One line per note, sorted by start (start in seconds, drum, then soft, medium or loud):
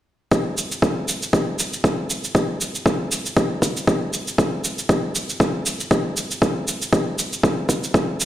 0.31 kick loud
0.31 cabasa soft
0.57 cabasa medium
0.72 cabasa soft
0.82 kick loud
0.82 cabasa soft
1.08 cabasa medium
1.22 cabasa medium
1.33 kick loud
1.33 cabasa soft
1.59 cabasa medium
1.73 cabasa soft
1.84 kick loud
1.84 cabasa soft
2.10 cabasa medium
2.24 cabasa soft
2.35 kick loud
2.35 cabasa soft
2.61 cabasa medium
2.75 cabasa medium
2.86 kick loud
2.86 cabasa soft
3.12 cabasa medium
3.26 cabasa soft
3.37 kick loud
3.37 cabasa soft
3.62 kick medium
3.62 cabasa medium
3.77 cabasa medium
3.87 kick loud
3.87 cabasa soft
4.13 cabasa medium
4.28 cabasa soft
4.38 kick loud
4.38 cabasa soft
4.64 cabasa medium
4.78 cabasa soft
4.89 kick loud
4.89 cabasa soft
5.15 cabasa medium
5.29 cabasa medium
5.40 kick loud
5.40 cabasa soft
5.66 cabasa medium
5.80 cabasa medium
5.91 kick loud
5.91 cabasa soft
6.17 cabasa medium
6.31 cabasa medium
6.42 kick loud
6.42 cabasa soft
6.68 cabasa medium
6.82 cabasa medium
6.93 kick loud
6.93 cabasa soft
7.19 cabasa medium
7.33 cabasa medium
7.43 kick loud
7.43 cabasa soft
7.69 kick medium
7.69 cabasa medium
7.84 cabasa medium
7.94 kick loud
7.94 cabasa soft
8.20 cabasa medium